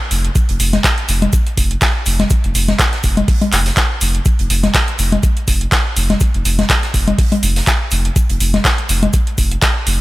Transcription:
0.11 F1, open hi-hat, shaker
0.25 closed hi-hat
0.35 kick, closed hi-hat, shaker
0.49 F1, closed hi-hat
0.60 F1, open hi-hat, shaker
0.73 snare, closed hi-hat, low conga
0.84 kick, snare, clap, closed hi-hat, shaker
0.98 closed hi-hat
1.08 F1, open hi-hat, shaker
1.22 closed hi-hat, low conga
1.33 kick, closed hi-hat, shaker
1.47 closed hi-hat
1.57 F1, kick, open hi-hat, shaker
1.71 closed hi-hat
1.82 kick, snare, clap, closed hi-hat, shaker
2.06 F1, open hi-hat, shaker
2.19 snare, closed hi-hat, low conga
2.30 kick, closed hi-hat, shaker
2.44 F1, closed hi-hat
2.55 F1, open hi-hat, shaker
2.68 snare, closed hi-hat, low conga
2.79 kick, snare, clap, closed hi-hat, shaker
2.93 snare, closed hi-hat
3.03 F1, kick, open hi-hat, shaker
3.17 closed hi-hat, low conga
3.28 kick, closed hi-hat, open hi-hat
3.42 closed hi-hat, low conga
3.52 F1, clap, open hi-hat, shaker
3.66 snare, open hi-hat
3.77 kick, snare, clap, closed hi-hat, shaker
4.01 F1, open hi-hat, shaker
4.15 closed hi-hat
4.25 kick, closed hi-hat, shaker
4.39 F1, closed hi-hat
4.50 F1, open hi-hat, shaker
4.63 snare, closed hi-hat, low conga
4.74 kick, snare, clap, closed hi-hat, shaker
4.88 closed hi-hat
4.99 F1, open hi-hat, shaker
5.12 closed hi-hat, low conga
5.23 kick, closed hi-hat, shaker
5.37 closed hi-hat
5.48 F1, kick, open hi-hat, shaker
5.61 closed hi-hat
5.72 kick, snare, clap, closed hi-hat, shaker
5.97 F1, open hi-hat, shaker
6.10 snare, closed hi-hat, low conga
6.20 kick, closed hi-hat, shaker
6.34 F1, closed hi-hat
6.45 F1, open hi-hat, shaker
6.59 snare, closed hi-hat, low conga
6.70 kick, snare, clap, closed hi-hat, shaker
6.83 snare, closed hi-hat
6.94 F1, kick, open hi-hat, shaker
7.08 closed hi-hat, low conga
7.18 kick, closed hi-hat, open hi-hat
7.32 closed hi-hat, low conga
7.43 F1, open hi-hat, shaker
7.56 snare, open hi-hat
7.67 kick, snare, clap, closed hi-hat, shaker
7.91 F1, open hi-hat, shaker
8.05 closed hi-hat
8.16 kick, closed hi-hat, shaker
8.29 F1, closed hi-hat
8.40 F1, open hi-hat, shaker
8.54 snare, closed hi-hat, low conga
8.65 kick, snare, clap, closed hi-hat, shaker
8.78 closed hi-hat
8.89 F1, open hi-hat, shaker
9.03 closed hi-hat, low conga
9.13 kick, closed hi-hat, shaker
9.27 closed hi-hat
9.38 F1, kick, open hi-hat, shaker
9.51 closed hi-hat
9.62 kick, snare, clap, closed hi-hat, shaker
9.87 F1, open hi-hat, shaker

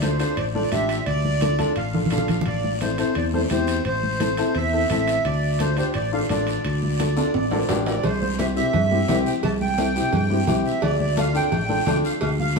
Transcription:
Already playing: D2
0.02 D4 F4 A4 C5, high conga, high timbale, short guiro
0.19 D4 F4 A4 C5, high timbale, short guiro
0.37 A1 D5, high conga, high timbale, long guiro
0.54 D4 F4 A4 D5, high conga
0.72 A1 D4 F4 G4 E5, high conga, high timbale, short guiro
0.89 high timbale, short guiro
1.06 D2 D5, high conga, high timbale, long guiro
1.25 high conga
1.41 D4 F4 A4, high conga, high timbale, short guiro
1.58 D4 F4 A4, high conga, high timbale, short guiro
1.76 A1 F5, high timbale, long guiro
1.94 D4 F4 A4, low conga
2.06 low conga
2.11 A#1 D4 F4 A4 F5, high timbale, short guiro
2.18 low conga
2.28 low conga, high timbale, short guiro
2.41 low conga
2.46 A1 D5, high conga, high timbale, long guiro
2.64 high conga
2.81 C4 E4 A4 C5, high conga, high timbale, short guiro
2.98 C4 E4 A4 C5, high timbale, short guiro
3.15 E2 D5, high conga, high timbale, long guiro
3.33 C4 E4 A4 C5, high conga
3.50 E2 C4 E4 G4 C5, high conga, high timbale, short guiro
3.67 high timbale, short guiro
3.85 A1 C5, high conga, high timbale, long guiro
4.03 high conga
4.20 C4 E4 A4, high conga, high timbale, short guiro
4.37 C4 E4 A4, high timbale, short guiro
4.55 E2 E5, high conga, high timbale, long guiro
4.73 C4 E4 A4
4.89 A1 C4 E4 A4 E5, high conga, high timbale, short guiro
5.08 high timbale, short guiro
5.25 D2 D5, high conga, high timbale, long guiro
5.59 D4 F4 A4 C5, high conga, high timbale, short guiro
5.77 D4 F4 G4 C5, high timbale, short guiro
5.94 A1 D5, high conga, high timbale, long guiro
6.12 D4 F4 A4 F5
6.29 A1 D4 F4 A4 D5, high conga, high timbale, short guiro
6.47 high timbale, short guiro
6.65 D2 D5, high conga, high timbale, long guiro
6.83 high conga
6.99 D4 F4 A4, high conga, high timbale, short guiro
7.16 D4 F4 A4, high timbale, short guiro
7.34 A1, high conga, high timbale, long guiro
7.51 D4 F4 A4, high conga, low timbale
7.69 A1 D4 F4 G4, high conga, low timbale, short guiro
7.86 D5, low timbale, short guiro
8.04 C2 C5, cowbell, high conga, low conga, long guiro
8.21 C5, high conga
8.38 C4 E4 G4 E5, cowbell, high conga, short guiro
8.56 C4 E4 G4 E5, short guiro
8.73 G2, cowbell, high conga, low conga, long guiro
8.91 C4 E4 G4, high conga
9.08 C2 C4 E4 G4, cowbell, high conga, low conga, low timbale, short guiro
9.26 G5, short guiro
9.43 C2 A5, cowbell, high conga, low conga, long guiro
9.61 G5, high conga
9.78 C4 E4 A4, cowbell, high conga, short guiro
9.95 C4 E4 G4, short guiro
10.12 G2, cowbell, high conga, low conga, long guiro
10.30 C4 E4 G4, high conga
10.47 C2 C4 E4 G4, cowbell, high conga, low conga, short guiro
10.66 E5, short guiro
10.82 D2 D5, cowbell, high conga, low conga, long guiro
11.00 D5, high conga
11.16 D4 F4 A4 F5, cowbell, high conga, short guiro
11.34 D4 F4 A4 G5, short guiro
11.52 A1, cowbell, high conga, low conga, long guiro
11.69 D4 F4 A4, high conga
11.86 D2 D4 F4 A4, cowbell, high conga, low conga, short guiro
12.05 F5, short guiro
12.21 D2 F5, cowbell, high conga, long guiro
12.39 F5, high conga
12.56 D4

